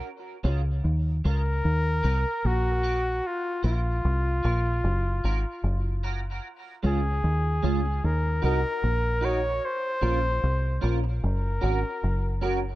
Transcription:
X:1
M:4/4
L:1/16
Q:"Swing 16ths" 1/4=75
K:Db
V:1 name="Flugelhorn"
z6 B6 G4 | F2 F12 z2 | z2 A6 B2 B4 d2 | c6 z2 B6 z2 |]
V:2 name="Clean electric guitar"
z2 [A,DF]2 z2 [A,DF]2 z2 [EGB]2 z2 [EGB]2 | z2 [DFB]2 z2 [DFB]2 z2 [DGB]2 z2 [DGB]2 | z2 [A,DF]2 z2 [A,DF]2 z2 [EGB]2 z2 [EGB]2 | z2 [DFB]2 z2 [DFB]2 z2 [DGB]2 z2 [DGB]2 |]
V:3 name="Fingered electric bass" clef=bass
z2 D,,2 E,,2 D,,2 E,,2 C,, z B,,,4 | z2 B,,,2 C,,2 B,,,2 G,,,2 A,,, z G,,,4 | z2 D,,2 E,,2 D,,2 E,,2 C,, z B,,,4 | z2 B,,,2 C,,2 B,,,2 G,,,2 A,,, z G,,,4 |]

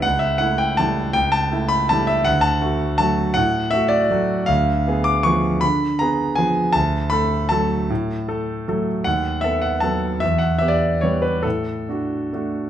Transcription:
X:1
M:3/4
L:1/16
Q:1/4=158
K:D
V:1 name="Grand piano"
f2 e2 f2 g2 a4 | g2 a4 b2 a2 e2 | f2 a6 a4 | f4 e2 d2 z4 |
=f6 d'2 c'4 | b4 _b4 _a4 | a4 b4 a4- | a8- a2 z2 |
f4 e2 f2 a4 | e2 f2 e d3 c2 B2 | A12 |]
V:2 name="Grand piano"
C,,4 [A,E]4 [G,A,E]4 | C,,4 [A,E]4 [G,A,E]4 | D,,4 [A,F]4 [F,A,F]4 | A,,4 [A,F]4 [F,A,F]4 |
D,,4 [B,_A]4 [=F,B,A]4 | D,4 [B,_A]4 [=F,B,A]4 | D,,4 [A,A]4 [F,A,A]4 | A,,4 [A,A]4 [F,A,A]4 |
^D,,4 [B,A]4 [F,B,A]4 | E,,4 [B,G]4 [G,B,G]4 | A,,4 [DF]4 [A,DF]4 |]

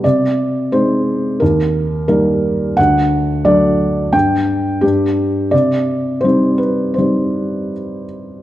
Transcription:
X:1
M:4/4
L:1/8
Q:1/4=87
K:Ablyd
V:1 name="Felt piano"
d2 c2 B2 B2 | ^f2 d2 g2 G2 | d2 c =B c3 z |]
V:2 name="Felt piano" clef=bass
C,2 [A,CE]2 E,,2 [G,B,E]2 | D,,2 [^F,=A,D]2 G,,2 G,,2 | C,2 [G,CE]2 [G,CE]2 z2 |]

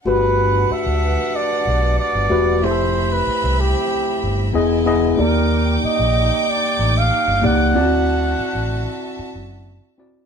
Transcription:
X:1
M:4/4
L:1/16
Q:1/4=94
K:G
V:1 name="Violin section"
[DBf]16 | [Ceb]12 [E^d^g]4 | [_Egd']16 | [Fea]16 |]
V:2 name="Flugelhorn"
B4 e4 d4 d4 | c3 B3 G6 z4 | _B4 _e4 d3 =f3 ^f2- | f12 z4 |]
V:3 name="Tine electric piano"
[A,FGB]6 z8 [A,FGB]2 | [A,EGA]6 z6 [B,E^G^d]2 [B,EGd]2 | [_B,_EGd]6 z8 [B,EGd]2 | [CE=F^Fd]6 z8 [CEFd]2 |]
V:4 name="Fingered electric bass" clef=bass
G,,,4 z D,,2 z3 B,,,2 z G,,, E,,,2 | =F,,,4 z C,,2 z3 G,,,2 E,,,4 | _E,,4 z _B,,,2 z3 A,,,2 z G,,, ^C,,2 | D,,4 z A,,,2 z3 F,,,3 z3 |]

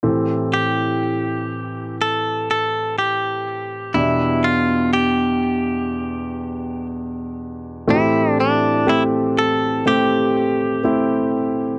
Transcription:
X:1
M:4/4
L:1/8
Q:1/4=61
K:Am
V:1 name="Clean electric guitar"
z G3 A A G2 | E F G4 z2 | E D E A G3 z |]
V:2 name="Grand piano"
[CGA]8 | [DGe]8 | [A,C^FG]2 [A,CG]2 [A,CG]2 [A,CE]2 |]
V:3 name="Grand piano" clef=bass
[A,,E,]8 | [E,,B,,]8 | [A,,E,]8 |]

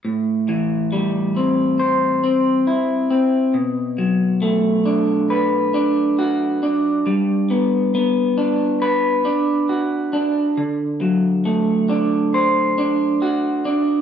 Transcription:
X:1
M:4/4
L:1/8
Q:1/4=68
K:Ador
V:1 name="Clean electric guitar"
A,, E, G, C c C E C | B,, F, A, D B D F D | G, B, B, D B D F D | D, F, A, D c D F D |]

